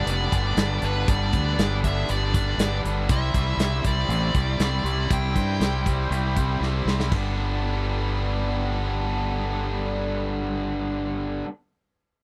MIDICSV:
0, 0, Header, 1, 5, 480
1, 0, Start_track
1, 0, Key_signature, 1, "major"
1, 0, Tempo, 503356
1, 1019, Time_signature, 4, 2, 24, 8
1, 11663, End_track
2, 0, Start_track
2, 0, Title_t, "Lead electric guitar"
2, 0, Program_c, 0, 29
2, 104, Note_on_c, 0, 74, 87
2, 810, Note_on_c, 0, 71, 72
2, 822, Note_off_c, 0, 74, 0
2, 1029, Note_on_c, 0, 74, 81
2, 1041, Note_off_c, 0, 71, 0
2, 1706, Note_off_c, 0, 74, 0
2, 1761, Note_on_c, 0, 76, 87
2, 1997, Note_off_c, 0, 76, 0
2, 2009, Note_on_c, 0, 74, 72
2, 2676, Note_off_c, 0, 74, 0
2, 2972, Note_on_c, 0, 76, 79
2, 3683, Note_off_c, 0, 76, 0
2, 3687, Note_on_c, 0, 74, 84
2, 4411, Note_off_c, 0, 74, 0
2, 4422, Note_on_c, 0, 74, 81
2, 4892, Note_on_c, 0, 79, 85
2, 4896, Note_off_c, 0, 74, 0
2, 6282, Note_off_c, 0, 79, 0
2, 11663, End_track
3, 0, Start_track
3, 0, Title_t, "Distorted electric guitar"
3, 0, Program_c, 1, 30
3, 49, Note_on_c, 1, 43, 69
3, 53, Note_on_c, 1, 50, 65
3, 56, Note_on_c, 1, 55, 71
3, 62, Note_on_c, 1, 59, 74
3, 68, Note_on_c, 1, 62, 72
3, 279, Note_off_c, 1, 43, 0
3, 286, Note_off_c, 1, 50, 0
3, 290, Note_on_c, 1, 43, 70
3, 295, Note_off_c, 1, 55, 0
3, 296, Note_off_c, 1, 59, 0
3, 298, Note_on_c, 1, 50, 76
3, 298, Note_on_c, 1, 55, 72
3, 306, Note_off_c, 1, 62, 0
3, 308, Note_on_c, 1, 59, 84
3, 317, Note_on_c, 1, 62, 80
3, 530, Note_off_c, 1, 43, 0
3, 532, Note_off_c, 1, 50, 0
3, 541, Note_on_c, 1, 43, 73
3, 544, Note_on_c, 1, 50, 82
3, 546, Note_off_c, 1, 62, 0
3, 547, Note_off_c, 1, 55, 0
3, 547, Note_off_c, 1, 59, 0
3, 551, Note_on_c, 1, 55, 82
3, 557, Note_on_c, 1, 62, 83
3, 558, Note_on_c, 1, 59, 79
3, 780, Note_off_c, 1, 43, 0
3, 787, Note_off_c, 1, 50, 0
3, 791, Note_on_c, 1, 43, 72
3, 794, Note_off_c, 1, 55, 0
3, 798, Note_off_c, 1, 59, 0
3, 798, Note_off_c, 1, 62, 0
3, 798, Note_on_c, 1, 55, 80
3, 799, Note_on_c, 1, 50, 63
3, 810, Note_on_c, 1, 59, 84
3, 810, Note_on_c, 1, 62, 77
3, 1036, Note_off_c, 1, 43, 0
3, 1043, Note_off_c, 1, 50, 0
3, 1048, Note_on_c, 1, 43, 83
3, 1052, Note_off_c, 1, 59, 0
3, 1054, Note_on_c, 1, 50, 85
3, 1058, Note_off_c, 1, 62, 0
3, 1059, Note_off_c, 1, 55, 0
3, 1063, Note_on_c, 1, 55, 89
3, 1064, Note_on_c, 1, 59, 92
3, 1070, Note_on_c, 1, 62, 85
3, 1265, Note_off_c, 1, 43, 0
3, 1275, Note_off_c, 1, 50, 0
3, 1276, Note_on_c, 1, 43, 77
3, 1286, Note_on_c, 1, 50, 80
3, 1288, Note_off_c, 1, 55, 0
3, 1288, Note_off_c, 1, 59, 0
3, 1291, Note_off_c, 1, 62, 0
3, 1291, Note_on_c, 1, 55, 85
3, 1299, Note_on_c, 1, 59, 81
3, 1303, Note_on_c, 1, 62, 90
3, 1503, Note_off_c, 1, 43, 0
3, 1510, Note_off_c, 1, 50, 0
3, 1515, Note_on_c, 1, 43, 63
3, 1519, Note_off_c, 1, 59, 0
3, 1521, Note_on_c, 1, 50, 76
3, 1524, Note_off_c, 1, 62, 0
3, 1528, Note_off_c, 1, 55, 0
3, 1531, Note_on_c, 1, 55, 80
3, 1531, Note_on_c, 1, 59, 69
3, 1535, Note_on_c, 1, 62, 73
3, 1738, Note_off_c, 1, 43, 0
3, 1750, Note_on_c, 1, 43, 77
3, 1751, Note_off_c, 1, 50, 0
3, 1762, Note_off_c, 1, 59, 0
3, 1763, Note_off_c, 1, 62, 0
3, 1763, Note_on_c, 1, 50, 77
3, 1764, Note_off_c, 1, 55, 0
3, 1768, Note_on_c, 1, 55, 72
3, 1774, Note_on_c, 1, 59, 71
3, 1774, Note_on_c, 1, 62, 88
3, 1975, Note_off_c, 1, 43, 0
3, 1975, Note_off_c, 1, 50, 0
3, 1985, Note_off_c, 1, 59, 0
3, 1986, Note_on_c, 1, 50, 71
3, 1987, Note_on_c, 1, 43, 74
3, 1990, Note_off_c, 1, 55, 0
3, 1994, Note_on_c, 1, 55, 71
3, 1996, Note_on_c, 1, 59, 78
3, 2001, Note_off_c, 1, 62, 0
3, 2013, Note_on_c, 1, 62, 77
3, 2193, Note_off_c, 1, 43, 0
3, 2196, Note_off_c, 1, 50, 0
3, 2205, Note_on_c, 1, 43, 75
3, 2208, Note_on_c, 1, 50, 75
3, 2212, Note_off_c, 1, 59, 0
3, 2215, Note_off_c, 1, 62, 0
3, 2216, Note_off_c, 1, 55, 0
3, 2220, Note_on_c, 1, 55, 72
3, 2223, Note_on_c, 1, 59, 76
3, 2226, Note_on_c, 1, 62, 85
3, 2443, Note_off_c, 1, 43, 0
3, 2454, Note_off_c, 1, 50, 0
3, 2454, Note_on_c, 1, 43, 72
3, 2465, Note_off_c, 1, 59, 0
3, 2466, Note_on_c, 1, 50, 71
3, 2468, Note_off_c, 1, 55, 0
3, 2469, Note_off_c, 1, 62, 0
3, 2472, Note_on_c, 1, 55, 72
3, 2477, Note_on_c, 1, 59, 68
3, 2480, Note_on_c, 1, 62, 82
3, 2678, Note_off_c, 1, 43, 0
3, 2680, Note_off_c, 1, 50, 0
3, 2690, Note_on_c, 1, 43, 63
3, 2692, Note_on_c, 1, 50, 72
3, 2695, Note_off_c, 1, 59, 0
3, 2697, Note_off_c, 1, 55, 0
3, 2697, Note_off_c, 1, 62, 0
3, 2701, Note_on_c, 1, 55, 66
3, 2707, Note_on_c, 1, 59, 65
3, 2708, Note_on_c, 1, 62, 75
3, 2920, Note_off_c, 1, 43, 0
3, 2921, Note_off_c, 1, 50, 0
3, 2929, Note_off_c, 1, 59, 0
3, 2929, Note_off_c, 1, 62, 0
3, 2951, Note_off_c, 1, 55, 0
3, 2951, Note_on_c, 1, 48, 80
3, 2955, Note_on_c, 1, 55, 87
3, 2961, Note_on_c, 1, 60, 100
3, 2965, Note_on_c, 1, 64, 93
3, 3169, Note_off_c, 1, 48, 0
3, 3173, Note_on_c, 1, 48, 73
3, 3177, Note_off_c, 1, 55, 0
3, 3181, Note_on_c, 1, 55, 83
3, 3187, Note_off_c, 1, 64, 0
3, 3188, Note_off_c, 1, 60, 0
3, 3191, Note_on_c, 1, 64, 81
3, 3192, Note_on_c, 1, 60, 77
3, 3426, Note_off_c, 1, 48, 0
3, 3426, Note_off_c, 1, 55, 0
3, 3430, Note_on_c, 1, 48, 69
3, 3430, Note_on_c, 1, 55, 74
3, 3438, Note_off_c, 1, 60, 0
3, 3442, Note_off_c, 1, 64, 0
3, 3442, Note_on_c, 1, 60, 82
3, 3446, Note_on_c, 1, 64, 81
3, 3645, Note_off_c, 1, 48, 0
3, 3649, Note_on_c, 1, 48, 73
3, 3656, Note_off_c, 1, 55, 0
3, 3659, Note_off_c, 1, 60, 0
3, 3660, Note_on_c, 1, 55, 82
3, 3663, Note_on_c, 1, 60, 88
3, 3667, Note_off_c, 1, 64, 0
3, 3670, Note_on_c, 1, 64, 88
3, 3893, Note_off_c, 1, 48, 0
3, 3904, Note_off_c, 1, 60, 0
3, 3904, Note_on_c, 1, 48, 69
3, 3906, Note_off_c, 1, 64, 0
3, 3908, Note_off_c, 1, 55, 0
3, 3912, Note_on_c, 1, 55, 72
3, 3915, Note_on_c, 1, 60, 69
3, 3918, Note_on_c, 1, 64, 63
3, 4129, Note_off_c, 1, 48, 0
3, 4134, Note_off_c, 1, 60, 0
3, 4139, Note_off_c, 1, 55, 0
3, 4140, Note_on_c, 1, 48, 69
3, 4141, Note_off_c, 1, 64, 0
3, 4143, Note_on_c, 1, 55, 72
3, 4145, Note_on_c, 1, 60, 71
3, 4152, Note_on_c, 1, 64, 76
3, 4368, Note_off_c, 1, 48, 0
3, 4379, Note_on_c, 1, 48, 68
3, 4380, Note_off_c, 1, 60, 0
3, 4382, Note_off_c, 1, 55, 0
3, 4385, Note_on_c, 1, 55, 83
3, 4387, Note_off_c, 1, 64, 0
3, 4391, Note_on_c, 1, 60, 81
3, 4398, Note_on_c, 1, 64, 89
3, 4604, Note_off_c, 1, 48, 0
3, 4615, Note_on_c, 1, 48, 77
3, 4617, Note_off_c, 1, 64, 0
3, 4618, Note_off_c, 1, 60, 0
3, 4619, Note_off_c, 1, 55, 0
3, 4623, Note_on_c, 1, 55, 74
3, 4629, Note_on_c, 1, 60, 67
3, 4629, Note_on_c, 1, 64, 70
3, 4842, Note_off_c, 1, 48, 0
3, 4851, Note_off_c, 1, 55, 0
3, 4852, Note_off_c, 1, 60, 0
3, 4854, Note_on_c, 1, 48, 72
3, 4862, Note_off_c, 1, 64, 0
3, 4863, Note_on_c, 1, 55, 87
3, 4864, Note_on_c, 1, 60, 97
3, 4873, Note_on_c, 1, 64, 90
3, 5078, Note_off_c, 1, 48, 0
3, 5088, Note_off_c, 1, 55, 0
3, 5089, Note_on_c, 1, 48, 72
3, 5090, Note_off_c, 1, 60, 0
3, 5097, Note_off_c, 1, 64, 0
3, 5100, Note_on_c, 1, 55, 79
3, 5102, Note_on_c, 1, 60, 84
3, 5108, Note_on_c, 1, 64, 76
3, 5336, Note_off_c, 1, 48, 0
3, 5338, Note_off_c, 1, 55, 0
3, 5342, Note_off_c, 1, 60, 0
3, 5347, Note_on_c, 1, 48, 59
3, 5348, Note_off_c, 1, 64, 0
3, 5350, Note_on_c, 1, 55, 68
3, 5354, Note_on_c, 1, 60, 65
3, 5360, Note_on_c, 1, 64, 74
3, 5567, Note_off_c, 1, 48, 0
3, 5572, Note_off_c, 1, 55, 0
3, 5576, Note_off_c, 1, 60, 0
3, 5579, Note_on_c, 1, 48, 71
3, 5584, Note_on_c, 1, 55, 83
3, 5585, Note_off_c, 1, 64, 0
3, 5588, Note_on_c, 1, 60, 83
3, 5597, Note_on_c, 1, 64, 67
3, 5808, Note_off_c, 1, 48, 0
3, 5808, Note_off_c, 1, 55, 0
3, 5812, Note_off_c, 1, 60, 0
3, 5819, Note_on_c, 1, 48, 57
3, 5820, Note_on_c, 1, 55, 58
3, 5823, Note_off_c, 1, 64, 0
3, 5824, Note_on_c, 1, 60, 64
3, 5834, Note_on_c, 1, 64, 68
3, 6049, Note_off_c, 1, 48, 0
3, 6059, Note_off_c, 1, 55, 0
3, 6060, Note_on_c, 1, 48, 66
3, 6063, Note_off_c, 1, 60, 0
3, 6065, Note_off_c, 1, 64, 0
3, 6070, Note_on_c, 1, 55, 68
3, 6074, Note_on_c, 1, 60, 74
3, 6076, Note_on_c, 1, 64, 78
3, 6282, Note_off_c, 1, 48, 0
3, 6284, Note_off_c, 1, 55, 0
3, 6293, Note_on_c, 1, 48, 67
3, 6294, Note_off_c, 1, 60, 0
3, 6295, Note_on_c, 1, 55, 68
3, 6305, Note_off_c, 1, 64, 0
3, 6305, Note_on_c, 1, 60, 68
3, 6316, Note_on_c, 1, 64, 76
3, 6540, Note_off_c, 1, 48, 0
3, 6544, Note_off_c, 1, 55, 0
3, 6547, Note_off_c, 1, 60, 0
3, 6548, Note_off_c, 1, 64, 0
3, 6551, Note_on_c, 1, 48, 63
3, 6555, Note_on_c, 1, 55, 60
3, 6558, Note_on_c, 1, 60, 61
3, 6560, Note_on_c, 1, 64, 78
3, 6774, Note_off_c, 1, 48, 0
3, 6776, Note_off_c, 1, 55, 0
3, 6778, Note_off_c, 1, 60, 0
3, 6778, Note_off_c, 1, 64, 0
3, 6778, Note_on_c, 1, 43, 73
3, 6792, Note_on_c, 1, 50, 77
3, 6800, Note_on_c, 1, 55, 81
3, 6813, Note_on_c, 1, 59, 90
3, 6818, Note_on_c, 1, 62, 94
3, 10909, Note_off_c, 1, 43, 0
3, 10923, Note_off_c, 1, 50, 0
3, 10931, Note_off_c, 1, 55, 0
3, 10943, Note_off_c, 1, 59, 0
3, 10949, Note_off_c, 1, 62, 0
3, 11663, End_track
4, 0, Start_track
4, 0, Title_t, "Fingered electric bass"
4, 0, Program_c, 2, 33
4, 62, Note_on_c, 2, 29, 83
4, 280, Note_off_c, 2, 29, 0
4, 307, Note_on_c, 2, 31, 85
4, 523, Note_off_c, 2, 31, 0
4, 542, Note_on_c, 2, 31, 80
4, 760, Note_off_c, 2, 31, 0
4, 787, Note_on_c, 2, 31, 86
4, 1003, Note_off_c, 2, 31, 0
4, 1036, Note_on_c, 2, 31, 92
4, 1247, Note_off_c, 2, 31, 0
4, 1265, Note_on_c, 2, 38, 78
4, 1482, Note_off_c, 2, 38, 0
4, 1513, Note_on_c, 2, 31, 81
4, 1948, Note_off_c, 2, 31, 0
4, 1999, Note_on_c, 2, 31, 75
4, 2431, Note_off_c, 2, 31, 0
4, 2459, Note_on_c, 2, 31, 76
4, 2678, Note_off_c, 2, 31, 0
4, 2712, Note_on_c, 2, 31, 77
4, 2926, Note_off_c, 2, 31, 0
4, 2950, Note_on_c, 2, 36, 89
4, 3165, Note_off_c, 2, 36, 0
4, 3186, Note_on_c, 2, 36, 77
4, 3401, Note_off_c, 2, 36, 0
4, 3406, Note_on_c, 2, 36, 83
4, 3632, Note_off_c, 2, 36, 0
4, 3667, Note_on_c, 2, 36, 73
4, 3884, Note_off_c, 2, 36, 0
4, 3897, Note_on_c, 2, 33, 81
4, 4119, Note_off_c, 2, 33, 0
4, 4142, Note_on_c, 2, 36, 81
4, 4361, Note_off_c, 2, 36, 0
4, 4384, Note_on_c, 2, 36, 81
4, 4603, Note_off_c, 2, 36, 0
4, 4614, Note_on_c, 2, 36, 77
4, 4838, Note_off_c, 2, 36, 0
4, 4872, Note_on_c, 2, 36, 79
4, 5087, Note_off_c, 2, 36, 0
4, 5112, Note_on_c, 2, 43, 78
4, 5327, Note_off_c, 2, 43, 0
4, 5340, Note_on_c, 2, 36, 71
4, 5785, Note_off_c, 2, 36, 0
4, 5822, Note_on_c, 2, 36, 78
4, 6266, Note_off_c, 2, 36, 0
4, 6299, Note_on_c, 2, 36, 66
4, 6521, Note_off_c, 2, 36, 0
4, 6536, Note_on_c, 2, 36, 69
4, 6760, Note_off_c, 2, 36, 0
4, 6784, Note_on_c, 2, 31, 78
4, 10877, Note_off_c, 2, 31, 0
4, 11663, End_track
5, 0, Start_track
5, 0, Title_t, "Drums"
5, 69, Note_on_c, 9, 42, 77
5, 164, Note_off_c, 9, 42, 0
5, 308, Note_on_c, 9, 36, 79
5, 311, Note_on_c, 9, 42, 57
5, 403, Note_off_c, 9, 36, 0
5, 406, Note_off_c, 9, 42, 0
5, 545, Note_on_c, 9, 42, 70
5, 551, Note_on_c, 9, 38, 105
5, 640, Note_off_c, 9, 42, 0
5, 646, Note_off_c, 9, 38, 0
5, 782, Note_on_c, 9, 42, 53
5, 788, Note_on_c, 9, 38, 30
5, 878, Note_off_c, 9, 42, 0
5, 883, Note_off_c, 9, 38, 0
5, 1031, Note_on_c, 9, 36, 109
5, 1031, Note_on_c, 9, 42, 80
5, 1126, Note_off_c, 9, 36, 0
5, 1127, Note_off_c, 9, 42, 0
5, 1266, Note_on_c, 9, 42, 58
5, 1271, Note_on_c, 9, 36, 81
5, 1361, Note_off_c, 9, 42, 0
5, 1366, Note_off_c, 9, 36, 0
5, 1515, Note_on_c, 9, 42, 69
5, 1521, Note_on_c, 9, 38, 103
5, 1610, Note_off_c, 9, 42, 0
5, 1616, Note_off_c, 9, 38, 0
5, 1755, Note_on_c, 9, 36, 74
5, 1757, Note_on_c, 9, 42, 52
5, 1850, Note_off_c, 9, 36, 0
5, 1852, Note_off_c, 9, 42, 0
5, 1991, Note_on_c, 9, 42, 74
5, 2086, Note_off_c, 9, 42, 0
5, 2235, Note_on_c, 9, 36, 80
5, 2236, Note_on_c, 9, 42, 56
5, 2330, Note_off_c, 9, 36, 0
5, 2331, Note_off_c, 9, 42, 0
5, 2474, Note_on_c, 9, 42, 83
5, 2479, Note_on_c, 9, 38, 101
5, 2569, Note_off_c, 9, 42, 0
5, 2575, Note_off_c, 9, 38, 0
5, 2722, Note_on_c, 9, 42, 59
5, 2818, Note_off_c, 9, 42, 0
5, 2948, Note_on_c, 9, 42, 85
5, 2950, Note_on_c, 9, 36, 109
5, 3044, Note_off_c, 9, 42, 0
5, 3046, Note_off_c, 9, 36, 0
5, 3188, Note_on_c, 9, 36, 85
5, 3191, Note_on_c, 9, 42, 63
5, 3284, Note_off_c, 9, 36, 0
5, 3286, Note_off_c, 9, 42, 0
5, 3429, Note_on_c, 9, 42, 73
5, 3434, Note_on_c, 9, 38, 90
5, 3524, Note_off_c, 9, 42, 0
5, 3530, Note_off_c, 9, 38, 0
5, 3666, Note_on_c, 9, 42, 55
5, 3667, Note_on_c, 9, 36, 83
5, 3762, Note_off_c, 9, 42, 0
5, 3763, Note_off_c, 9, 36, 0
5, 3912, Note_on_c, 9, 42, 66
5, 4008, Note_off_c, 9, 42, 0
5, 4144, Note_on_c, 9, 42, 58
5, 4145, Note_on_c, 9, 36, 74
5, 4239, Note_off_c, 9, 42, 0
5, 4241, Note_off_c, 9, 36, 0
5, 4384, Note_on_c, 9, 42, 73
5, 4389, Note_on_c, 9, 38, 97
5, 4479, Note_off_c, 9, 42, 0
5, 4485, Note_off_c, 9, 38, 0
5, 4635, Note_on_c, 9, 42, 55
5, 4730, Note_off_c, 9, 42, 0
5, 4868, Note_on_c, 9, 36, 105
5, 4870, Note_on_c, 9, 42, 79
5, 4964, Note_off_c, 9, 36, 0
5, 4965, Note_off_c, 9, 42, 0
5, 5108, Note_on_c, 9, 36, 81
5, 5109, Note_on_c, 9, 42, 48
5, 5203, Note_off_c, 9, 36, 0
5, 5205, Note_off_c, 9, 42, 0
5, 5351, Note_on_c, 9, 42, 64
5, 5357, Note_on_c, 9, 38, 85
5, 5447, Note_off_c, 9, 42, 0
5, 5452, Note_off_c, 9, 38, 0
5, 5589, Note_on_c, 9, 36, 78
5, 5592, Note_on_c, 9, 42, 56
5, 5684, Note_off_c, 9, 36, 0
5, 5688, Note_off_c, 9, 42, 0
5, 5837, Note_on_c, 9, 42, 67
5, 5933, Note_off_c, 9, 42, 0
5, 6070, Note_on_c, 9, 36, 77
5, 6070, Note_on_c, 9, 42, 52
5, 6165, Note_off_c, 9, 36, 0
5, 6165, Note_off_c, 9, 42, 0
5, 6319, Note_on_c, 9, 38, 48
5, 6414, Note_off_c, 9, 38, 0
5, 6558, Note_on_c, 9, 38, 66
5, 6654, Note_off_c, 9, 38, 0
5, 6673, Note_on_c, 9, 38, 70
5, 6768, Note_off_c, 9, 38, 0
5, 6788, Note_on_c, 9, 36, 85
5, 6788, Note_on_c, 9, 49, 66
5, 6883, Note_off_c, 9, 36, 0
5, 6883, Note_off_c, 9, 49, 0
5, 11663, End_track
0, 0, End_of_file